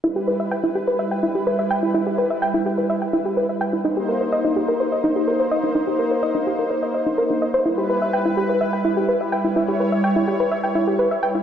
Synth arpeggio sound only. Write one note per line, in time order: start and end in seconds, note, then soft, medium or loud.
0.04 0.15 E4 loud
0.16 0.20 G4 medium
0.28 0.35 B4 medium
0.40 0.47 E5 medium
0.51 0.56 G5 loud
0.64 0.74 E4 medium
0.75 0.82 G4 medium
0.88 0.92 B4 medium
0.99 1.10 E5 medium
1.11 1.22 G5 medium
1.23 1.34 E4 loud
1.35 1.42 G4 medium
1.47 1.54 B4 medium
1.59 1.63 E5 medium
1.71 1.75 G5 loud
1.83 1.90 E4 medium
1.94 2.05 E4 loud
2.07 2.11 G4 medium
2.18 2.25 B4 medium
2.30 2.37 E5 medium
2.42 2.46 G5 loud
2.54 2.64 E4 loud
2.66 2.73 G4 medium
2.78 2.82 B4 medium
2.90 3.00 E5 medium
3.02 3.12 G5 medium
3.13 3.24 E4 loud
3.25 3.32 G4 medium
3.37 3.44 B4 medium
3.49 3.53 E5 medium
3.61 3.65 G5 loud
3.73 3.80 E4 medium
3.85 3.95 D#4 loud
3.97 4.01 G4 medium
4.09 4.16 A#4 medium
4.21 4.28 C5 medium
4.32 4.37 D#5 loud
4.45 4.55 D#4 loud
4.56 4.63 G4 medium
4.68 4.73 A#4 medium
4.80 4.91 C5 medium
4.92 5.02 D#5 medium
5.04 5.15 D#4 loud
5.16 5.23 G4 medium
5.28 5.35 A#4 medium
5.40 5.44 C5 medium
5.51 5.56 D#5 loud
5.64 5.70 D#4 medium
5.75 5.86 D#4 loud
5.87 5.92 G4 medium
5.99 6.06 A#4 medium
6.11 6.18 C5 medium
6.23 6.27 D#5 loud
6.35 6.45 D#4 loud
6.47 6.54 G4 medium
6.59 6.63 A#4 medium
6.71 6.81 C5 medium
6.83 6.93 D#5 medium
6.94 7.01 D#5 medium
7.06 7.13 D#4 medium
7.18 7.25 A#4 medium
7.30 7.37 D#4 medium
7.42 7.49 D#5 medium
7.54 7.61 C5 loud
7.66 7.76 E4 medium
7.78 7.82 G4 medium
7.90 7.97 B4 medium
8.02 8.09 E5 medium
8.13 8.18 G5 medium
8.25 8.36 E4 medium
8.37 8.44 G4 medium
8.49 8.53 B4 medium
8.61 8.72 E5 medium
8.73 8.83 G5 medium
8.85 8.95 E4 loud
8.97 9.04 G4 medium
9.09 9.16 B4 medium
9.21 9.25 E5 medium
9.32 9.37 G5 loud
9.45 9.51 E4 medium
9.56 9.67 E4 loud
9.68 9.73 G4 medium
9.80 9.87 B4 medium
9.92 9.99 E5 medium
10.04 10.08 G5 loud
10.16 10.26 E4 loud
10.28 10.35 G4 medium
10.40 10.44 B4 medium
10.52 10.62 E5 medium
10.64 10.74 G5 medium
10.75 10.86 E4 loud
10.87 10.94 G4 medium
10.99 11.06 B4 medium
11.11 11.15 E5 medium
11.23 11.27 G5 loud
11.35 11.42 E4 medium